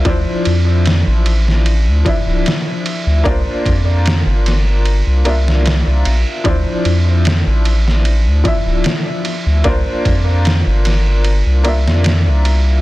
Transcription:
<<
  \new Staff \with { instrumentName = "Upright piano" } { \time 4/4 \key d \minor \tempo 4 = 75 <f d' e' c''>2~ <f d' e' c''>8 <f d' e' e''>4. | <bes d' f'>2~ <bes d' f'>8 <bes d' f' e''>4. | <f d' e' c''>2~ <f d' e' c''>8 <f d' e' e''>4. | <bes d' f' c''>2~ <bes d' f' c''>8 <bes d' f' e''>4. | }
  \new Staff \with { instrumentName = "Analog synth bass" } { \clef bass \time 4/4 \key d \minor d,16 r16 f,8. a,,4 d,16 r16 d,,16 r8. d,16 | c,16 r16 f,8. g,,4 c,16 c,8. c,16 bes,,16 r16 | d,16 r16 f,8. a,,4 d,16 r16 d,,16 r8. d,16 | c,16 r16 f,8. g,,4 c,8 f,8 c,8. | }
  \new DrumStaff \with { instrumentName = "Drums" } \drummode { \time 4/4 <bd cymr>8 cymr8 <cymr sn>8 cymr16 sn16 cymr8 <bd cymr>8 <cymr sn>8 cymr8 | <bd cymr>8 <bd cymr>8 <cymr sn>8 <cymr sn>8 cymr8 cymr16 sn16 <cymr sn>8 cymr8 | <bd cymr>8 cymr8 <cymr sn>8 cymr16 sn16 cymr8 <bd cymr>8 <cymr sn>8 cymr8 | <bd cymr>8 <bd cymr>8 <cymr sn>8 <cymr sn>8 cymr8 cymr16 sn16 <cymr sn>8 cymr8 | }
>>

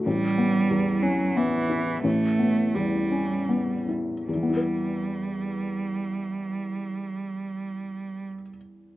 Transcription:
<<
  \new Staff \with { instrumentName = "Felt piano" } { \time 3/4 \key e \dorian \tempo 4 = 76 a,,8 b8 e,8 cis'8 b8 e'8 | a,,8 b8 e,8 cis'8 b8 e'8 | <e, e b e' b'>2.~ | <e, e b e' b'>2. | }
  \new Staff \with { instrumentName = "Cello" } { \clef bass \time 3/4 \key e \dorian g4. fis8 e4 | a4 g4. r8 | g2.~ | g2. | }
>>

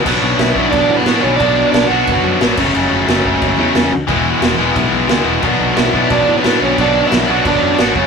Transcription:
<<
  \new Staff \with { instrumentName = "Overdriven electric guitar" } { \time 4/4 \key b \dorian \tempo 4 = 179 r4 <e' e''>4 <d' d''>8. <b b'>8. <cis' cis''>8 | <d' d''>4 <d' d''>8 <fis' fis''>4. r4 | r1 | r1 |
r4 <e' e''>4 <d' d''>8. <b b'>8. <cis' cis''>8 | <d' d''>8. <e' e''>8. <fis' fis''>8 <d' d''>4 <fis' fis''>8. r16 | }
  \new Staff \with { instrumentName = "Distorted electric guitar" } { \clef bass \time 4/4 \key b \dorian <b, fis b d'>4. <b, fis b d'>4. <b, fis b d'>4 | <b, fis b d'>4. <b, fis b d'>4. <b, fis b d'>8 <fis, cis fis a cis'>8~ | <fis, cis fis a cis'>4 <fis, cis fis a cis'>4. <fis, cis fis a cis'>4 r8 | <e gis b e'>4. <e gis b e'>4. <e gis b e'>4 |
<b, fis b d'>4. <b, fis b d'>4. <b, fis b d'>4 | <b, fis b d'>4. <b, fis b d'>4. <b, fis b d'>8 <fis, cis fis a cis'>8 | }
  \new Staff \with { instrumentName = "Overdriven electric guitar" } { \clef bass \time 4/4 \key b \dorian <b, fis b d'>4. <b, fis b d'>4. <b, fis b d'>4 | <b, fis b d'>4. <b, fis b d'>4. <b, fis b d'>8 <fis, cis fis a cis'>8~ | <fis, cis fis a cis'>4 <fis, cis fis a cis'>4. <fis, cis fis a cis'>4 r8 | <e gis b e'>4. <e gis b e'>4. <e gis b e'>4 |
<b, fis b d'>4. <b, fis b d'>4. <b, fis b d'>4 | <b, fis b d'>4. <b, fis b d'>4. <b, fis b d'>8 <fis, cis fis a cis'>8 | }
  \new Staff \with { instrumentName = "Overdriven electric guitar" } { \clef bass \time 4/4 \key b \dorian <b, fis b>2 <b, fis b>2 | <b, fis b>2 <b, fis b>4. <fis, cis fis>8~ | <fis, cis fis>4. <fis, cis fis>2 r8 | <e, b, e>2 <e, b, e>2 |
<b, fis b>2 <b, fis b>2 | <b, fis b>2 <b, fis b>4. <fis, cis fis>8 | }
  \new Staff \with { instrumentName = "Picked electric bass" } { \clef bass \time 4/4 \key b \dorian b,,8 b,,8 b,,8 b,,8 b,,8 a,8 a,8 b,,8 | b,,4 b,,8 b,,8 fis,,8 fis,8 a,,8 fis,,8 | fis,,8 fis,,8 fis,,8 fis,,8 fis,,8 e,8 e,8 d,8 | e,,4 e,,8 e,,8 b,,8 b,,8 d,8 e,,8 |
b,,8 b,,8 b,,8 b,,8 b,,8 a,8 a,8 b,,8 | b,,4 b,,8 b,,8 fis,,8 fis,8 a,,8 fis,,8 | }
  \new DrumStaff \with { instrumentName = "Drums" } \drummode { \time 4/4 <cymc bd>4 <cymc sn>8 bd8 <cymc bd>4 <cymc sn>4 | <cymc bd>4 <cymc sn>4 <cymc bd>4 <cymc sn>8 <cymc bd>8 | cymc4 <cymc sn>8 bd8 <cymc bd>4 <cymc sn>4 | <cymc bd>4 <cymc sn>4 <cymc bd>4 <cymc sn>4 |
<cymc bd>4 <cymc sn>8 bd8 <cymc bd>4 <cymc sn>4 | <cymc bd>4 <cymc sn>4 <cymc bd>4 <cymc sn>8 bd8 | }
>>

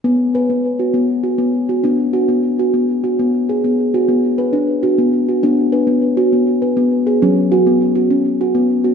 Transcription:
<<
  \new Staff \with { instrumentName = "Steel tongue drum" } { \time 6/8 \tempo 4. = 67 b8 b'16 b8 fis'16 b8 fis'16 b8 fis'16 | d'8 fis'16 b8 fis'16 b8 fis'16 b8 gis'16 | r8 fis'16 b8 b'16 d'8 fis'16 b8 fis'16 | d'8 b'16 b8 fis'16 b8 b'16 b8 gis'16 |
cis'8 fis'16 b8 fis'16 cis'8 fis'16 b8 fis'16 | }
  \new Staff \with { instrumentName = "Steel tongue drum" } { \time 6/8 r2. | b2. | b2. | b2. |
fis2. | }
>>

